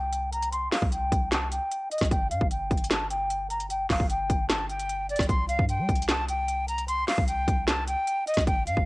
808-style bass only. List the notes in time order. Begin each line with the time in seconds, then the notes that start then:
Already playing: C2
0.82 C2
1.12 C2
2.01 C2
2.11 G1
2.31 G2
2.41 G1
2.71 G1
3.90 G1
4.00 G1
4.30 G1
5.19 G1
5.29 C2
5.59 G2
5.79 G3
5.89 C2
7.18 C2
7.48 C2
8.37 C2
8.47 G1
8.67 G2
8.77 G1